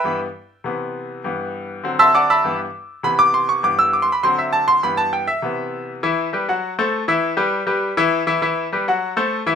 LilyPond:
<<
  \new Staff \with { instrumentName = "Grand piano" } { \time 4/4 \key g \major \tempo 4 = 201 <b' e'' g'' b''>8 r2. r8 | r2 r8 <e'' a'' c''' e'''>8 <d'' fis'' a'' d'''>8 <e'' a'' b'' e'''>8~ | <e'' a'' b'' e'''>8 r4. b''8 d'''8 c'''8 cis'''8 | d'''8 e'''8 \tuplet 3/2 { d'''8 c'''8 b''8 } c'''8 e''8 a''8 c'''8 |
b''8 a''8 g''8 e''2~ e''16 r16 | <e e' e''>4 <g g' b'>8 <fis fis' fis''>4 <a a' c''>4 <e e' e''>8~ | <e e' e''>8 <g g' b'>4 <g g' b'>4 <e e' e''>4 <e e' e''>8 | <e e' e''>4 <g g' b'>8 <fis fis' fis''>4 <a a' c''>4 <e e' e''>8 | }
  \new Staff \with { instrumentName = "Grand piano" } { \clef bass \time 4/4 \key g \major <g, e b>8 r4. <c e b>2 | <g, e b>2 <d fis c'>2 | <g, e b>8 r4. <c e b>2 | <g, e b>4. r8 <d fis c'>2 |
<g, e b>4. r8 <c e b>2 | r1 | r1 | r1 | }
>>